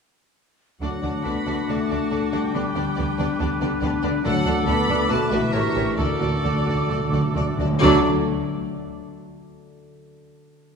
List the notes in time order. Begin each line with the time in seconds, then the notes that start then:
0.81 D2 D3 F#3 A3 D4 F#4 D5 F#5 D6
1.02 D2 D3 A3 D4 F#4 D5
1.24 D2 D3 A3 B3 D4 F#4 A4 D5 B5
1.46 D2 D3 A3 D4 F#4 D5
1.67 D2 D3 A3 D4 F#4 D5 A5
1.89 D2 D3 A3 D4 F#4 D5
2.11 D2 D3 A3 D4 F#4 A4 D5
2.32 D2 D3 G3 A3 D4 F#4 D5 G5
2.54 D2 D3 B3 D4 G4 B4 D5
2.75 D2 D3 B3 D4 G4 D5
2.96 D2 D3 B3 D4 G4 B4 D5
3.18 D2 D3 B3 D4 G4 D5
3.39 D2 D3 B3 D4 G4 D5
3.60 D2 D3 B3 D4 G4 D5
3.81 D2 D3 B3 D4 G4 B4 D5
4.02 D2 D3 B3 D4 G4 D5
4.24 D2 D3 F#3 A3 D4 A4 D5 F#5 D6
4.45 D2 D3 A3 D4 A4 D5
4.65 D2 D3 A3 B3 D4 F#4 A4 D5 B5
4.88 D2 D3 A3 D4 A4 D5
5.09 B1 B2 A3 F#4 B4 D5 A5
5.31 B1 B2 E3 A3 D4 F#4 B4 D5 E5
5.52 A1 A2 A3 G4 A#4 C#5 C#6
5.75 A1 A2 A3 C#4 G4 A#4 C#5
5.96 D2 D3 A3 F#4 A4 D5 D6
6.14 D3
6.20 D2 D3 A3 D4 F#4 A4 D5
6.30 D3
6.37 D3
6.44 D2 D3 A3 F#4 A4 D5
6.54 D3
6.62 D3 A3 F#4
6.66 D2 D3 A4 D5
6.71 D3
6.77 D3
6.85 D3 A3 F#4
6.90 D2 D3 F#3 A4 D5
7.01 D3
7.09 D2 D3 A3 F#4
7.13 D4 A4 D5
7.17 D3
7.25 D3
7.33 D2 D3 A3 F#4 A4 D5
7.41 D3
7.49 D3
7.57 D2 D3 A3 F#4 A4 D5
7.65 D3
7.73 D3
7.78 D2 D3 F#3 A3 D4 F#4 A4 D5 D6
7.82 D4 A4 D5